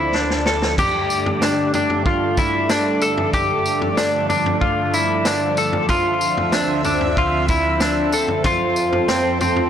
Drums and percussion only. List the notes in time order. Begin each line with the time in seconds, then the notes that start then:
0.14 snare
0.30 snare
0.46 snare
0.62 snare
0.78 kick, floor tom, tambourine, crash
1.10 tambourine
1.26 floor tom
1.42 snare, tambourine
1.74 floor tom, tambourine
1.90 floor tom
2.06 kick
2.37 kick, tambourine
2.69 snare, tambourine
3.02 tambourine
3.18 floor tom
3.34 kick, floor tom, tambourine
3.66 tambourine
3.82 floor tom
3.97 snare, tambourine
4.30 floor tom, tambourine
4.46 floor tom
4.62 kick
4.94 tambourine
5.25 snare, tambourine
5.57 tambourine
5.73 floor tom
5.89 kick, floor tom, tambourine
6.21 tambourine
6.37 floor tom
6.52 snare, tambourine
6.85 floor tom, tambourine
7.01 floor tom
7.17 kick
7.48 kick, tambourine
7.80 snare, tambourine
8.12 tambourine
8.28 floor tom
8.44 kick, floor tom, tambourine
8.76 tambourine
8.93 floor tom
9.08 snare, tambourine
9.41 floor tom, tambourine
9.56 floor tom